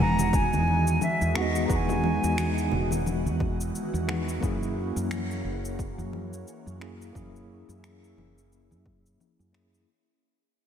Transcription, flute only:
0.01 A#5
0.35 G#5
1.03 E5
1.38 D#5 F#5
1.65 A#5
1.71 A#5
1.75 G#5

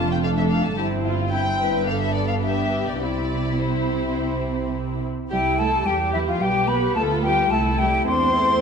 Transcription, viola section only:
Already playing: A3 D4
0.25 A3 D4
0.78 C4 E4
1.32 C4 E4
1.87 B3 D4
2.99 C4 E4
3.58 C4 E4
5.30 G3 E4
5.87 G4
6.42 B3 G4
6.97 F4
7.52 A3 E4
8.08 D4
8.35 E4

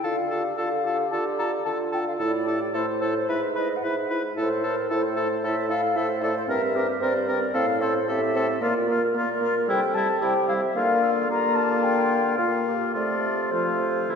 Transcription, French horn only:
0.04 F4
0.31 F4
0.58 F4
0.85 F4
1.12 F4
1.39 F4
1.66 F4
1.93 F4
2.21 E4
2.47 E4
2.75 E4
3.03 E4
3.29 E4
3.57 E4
3.84 E4
4.11 E4
4.37 E4
4.64 E4
4.91 E4
5.16 E4
5.44 E4
5.69 E4
5.96 E4
6.21 E4
6.47 C4
6.74 C4
7.01 C4
7.27 C4
7.54 C4
7.80 C4
8.09 C4
8.35 C4
8.61 A#3
8.88 A#3
9.14 A#3
9.41 A#3
9.67 G3
9.95 G3
10.22 G3
10.48 G3
10.75 A#3
11.29 A#3
12.38 A#3
12.95 A3
13.53 F3
14.09 E3

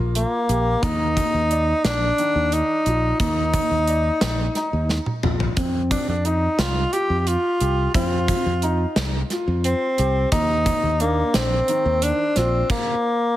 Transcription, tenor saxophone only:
0.15 A#3
0.83 D#4
1.85 D4
2.53 D#4
3.20 D#4
5.91 D4
6.09 D4
6.26 D#4
6.59 F4
6.93 G4
7.20 G4
7.27 F4
7.95 F4
9.64 C4
10.32 D#4
11.01 A#3
11.35 C4
12.02 D4
12.37 C4
12.71 A#3

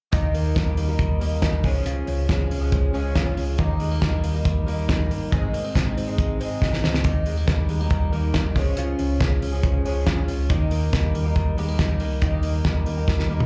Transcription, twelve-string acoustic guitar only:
0.12 D#3 A#3 D#4 G4
0.55 D#3 A#3 D#4 G4
0.88 D#3 A#3 D#4 G4
1.20 D#3 A#3 D#4 G4
1.52 A#3 D#4 G4
1.63 C#3 F3 G#3 C#4 G#4
2.27 F3 G#3 C#4 G#4
2.61 C#3 F3 G#3 C#4 G#4
2.93 C#3 F3 G#3 C#4 G#4
3.25 G#3 C#4 G#4
3.58 D#3 A#3 D#4 G4
4.02 D#3 A#3 D#4 G4
4.34 D#3 A#3 D#4 G4
4.66 D#3 A#3 D#4 G4
4.99 A#3 D#4 G4
5.31 G#2 D#3 G#3 C4 D#4 G#4
5.74 G#3 C4 D#4 G#4
6.07 G#2 D#3 G#3 C4 D#4 G#4
6.39 G#2 D#3 G#3 C4 D#4 G#4
6.71 G#3 C4 D#4 G#4
7.03 D#3 A#3 D#4 G4
7.47 D#3 A#3 D#4 G4
7.79 D#3 A#3 D#4 G4
8.12 D#3 A#3 D#4 G4
8.44 A#3 D#4 G4
8.56 C#3 F3 G#3 C#4 G#4
9.20 F3 G#3 C#4 G#4
9.52 C#3 F3 G#3 C#4 G#4
9.85 C#3 F3 G#3 C#4 G#4
10.17 G#3 C#4 G#4
10.49 D#3 A#3 D#4 G4
10.91 D#3 A#3 D#4 G4
11.24 D#3 A#3 D#4 G4
11.57 D#3 A#3 D#4 G4
11.89 A#3 D#4 G4
12.22 D#3 A#3 D#4 G4
12.64 D#3 A#3 D#4 G4
12.97 D#3 A#3 D#4 G4
13.29 D#3 A#3 D#4 G4

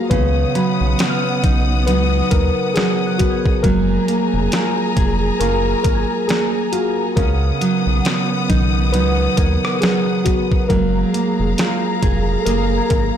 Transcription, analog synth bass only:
0.11 C#2
0.81 B1
1.44 B1
1.88 C#2
2.32 D#2
3.64 F#1
4.34 F1
4.97 F1
5.40 F#1
5.85 G#1
7.17 C#2
7.87 B1
8.50 B1
8.94 C#2
9.38 D#2
10.70 F#1
11.40 F1
12.03 F1
12.46 F#1
12.91 G#1

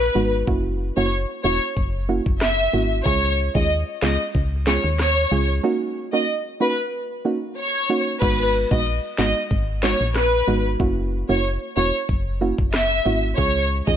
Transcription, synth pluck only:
0.15 G#3 B3 D#4 F#4
0.47 A#3 C#4 E4 F#4
0.97 A#3 C#4 E4 F#4
1.44 A#3 C#4 E4 F#4
2.08 A#3 C#4 E4 F#4
2.73 A#3 C#4 E4 F#4
3.05 G#3 C#4 F4 G#4
3.55 G#3 C#4 F4 G#4
4.02 G#3 C#4 F4 G#4
4.67 G#3 C#4 F4 G#4
5.31 G#3 C#4 F4 G#4
5.63 A#3 C#4 D#4 F#4
6.13 A#3 C#4 D#4 F#4
6.60 A#3 C#4 D#4 F#4
7.25 A#3 C#4 D#4 F#4
7.89 A#3 C#4 D#4 F#4
8.22 G#3 B3 D#4 F#4
8.71 G#3 B3 D#4 F#4
9.18 G#3 B3 D#4 F#4
9.83 G#3 B3 D#4 F#4
10.47 G#3 B3 D#4 F#4
10.80 A#3 C#4 E4 F#4
11.29 A#3 C#4 E4 F#4
11.76 A#3 C#4 E4 F#4
12.41 A#3 C#4 E4 F#4
13.05 A#3 C#4 E4 F#4
13.38 G#3 C#4 F4 G#4
13.87 G#3 C#4 F4 G#4

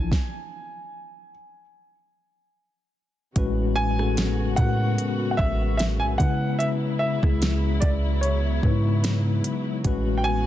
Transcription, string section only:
3.36 C#3 F#3 B3 F#4
6.19 E4
7.82 B3
9.85 C#3 B3 F#4

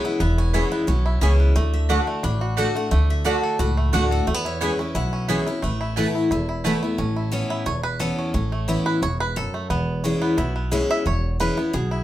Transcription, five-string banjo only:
Already playing: B3 C#4
0.04 E4
0.20 B3
0.38 C#4
0.54 E4
0.72 B3
0.88 C#4
1.06 E4
1.22 E4
1.40 B3
1.56 A3
1.89 F#4
2.07 A3
2.23 D4
2.41 F#4
2.57 A4
2.75 A3
2.91 A3
3.25 D4
3.43 A4
3.59 F#4
3.77 A3
3.93 D4
4.11 A4
4.27 A3
4.34 B3
4.45 E4
4.61 B3
4.79 C#4
4.95 E4
5.13 C#4
5.28 B3
5.46 E4
5.62 A3
5.81 E4
5.97 A3
6.15 E4
6.31 E4
6.49 E4
6.65 A3
6.83 E4
6.99 C#4
7.16 E4
7.33 A4
7.50 E4
7.66 C#5
7.83 B4
8.00 A4
8.18 C#4
8.34 C#4
8.52 A3
8.68 E4
8.86 B4
9.03 C#5
9.20 B4
9.37 A4
9.54 A3
9.70 B3
10.04 C#4
10.22 B3
10.38 E4
10.56 B3
10.72 E4
10.91 E5
11.07 C#5
11.40 B4
11.58 B3
11.74 G#4
11.91 E4

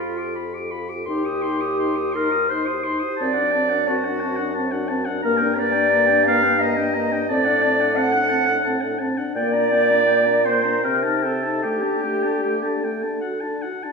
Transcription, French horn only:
0.00 F4
0.17 G4
0.36 F4
0.54 G4
0.72 F4
0.90 G4
1.07 D#4
1.25 G4
1.43 D#4
1.62 G4
1.79 D#4
1.97 G4
2.15 D#4
2.33 G4
2.51 D#4
2.68 G4
2.85 D#4
3.05 G4
3.21 C4
3.38 D4
3.55 C4
3.72 D4
3.88 C4
4.06 D4
4.22 C4
4.39 D4
4.56 C4
4.73 D4
4.91 C4
5.08 D4
5.25 A#3
5.42 D4
5.59 A#3
5.75 D4
5.93 A#3
6.09 D4
6.28 A#3
6.45 D4
6.61 A#3
6.78 D4
6.96 A#3
7.12 D4
7.30 C4
7.46 D4
7.63 C4
7.79 D4
7.96 C4
8.13 D4
8.30 C4
8.49 D4
8.66 C4
8.83 D4
9.01 C4
9.18 D4
9.37 A#3
9.55 D4
9.73 A#3
9.91 D4
10.08 A#3
10.28 D4
10.47 A#3
10.66 D4
10.84 C4
11.03 D#4
11.24 C4
11.43 D#4
11.64 A3
11.83 D4
12.04 A3
12.25 D4
12.45 A3
12.64 D4
12.83 A3
13.04 D4
13.23 F#4
13.44 D4
13.64 F#4
13.84 D4

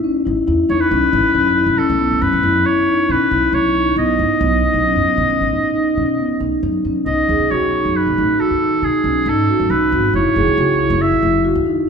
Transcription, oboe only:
0.70 C#5
0.80 B4
1.78 A4
2.22 B4
2.66 C#5
3.11 B4
3.54 C#5
3.98 D#5
7.06 D#5
7.51 C#5
7.96 B4
8.40 A4
8.84 G#4
9.28 A4
9.70 B4
10.15 C#5
11.01 E5

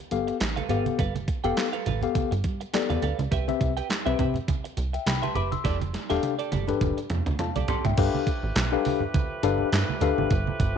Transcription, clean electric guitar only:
0.27 muted clean electric guitar stroke
0.40 muted clean electric guitar stroke
0.56 A4 B4 F5
0.69 A4 B4 F5
0.86 muted clean electric guitar stroke
0.99 A4 B4 F5
1.15 muted clean electric guitar stroke
1.28 muted clean electric guitar stroke
1.44 A4 B4 G5
1.73 A4 B4 F5
1.86 A4 B4 F5
2.02 muted clean electric guitar stroke
2.15 muted clean electric guitar stroke
2.31 muted clean electric guitar stroke
2.61 muted clean electric guitar stroke
2.74 muted clean electric guitar stroke
2.90 A4 B4 F5
3.02 A4 B4 F5
3.19 muted clean electric guitar stroke
3.31 G4 B4 E5
3.48 muted clean electric guitar stroke
3.60 muted clean electric guitar stroke
3.77 G4 B4 G5
3.90 muted clean electric guitar stroke
4.06 G4 B4 E5
4.19 G4 B4 E5
4.35 muted clean electric guitar stroke
4.48 muted clean electric guitar stroke
4.64 muted clean electric guitar stroke
4.93 muted clean electric guitar stroke
5.06 muted clean electric guitar stroke
5.22 G4 B4 E5
5.35 G4 B4 E5
5.51 muted clean electric guitar stroke
5.64 G4 A4 D5
5.80 muted clean electric guitar stroke
5.93 muted clean electric guitar stroke
6.10 G4 A4 E5
6.23 muted clean electric guitar stroke
6.39 G4 A4 D5
6.52 G4 A4 D5
6.68 muted clean electric guitar stroke
6.81 muted clean electric guitar stroke
6.97 muted clean electric guitar stroke
7.27 muted clean electric guitar stroke
7.40 muted clean electric guitar stroke
7.56 G4 A4 D5
7.68 G4 A4 D5
7.85 muted clean electric guitar stroke

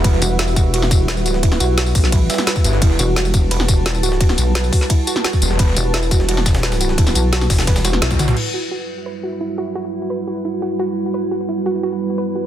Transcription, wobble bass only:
0.22 E1
1.21 D1
1.43 C1
1.60 B1
1.95 B1
2.99 E1
3.98 D1
4.20 C1
4.38 B1
5.77 E1
7.15 B1
7.50 E1

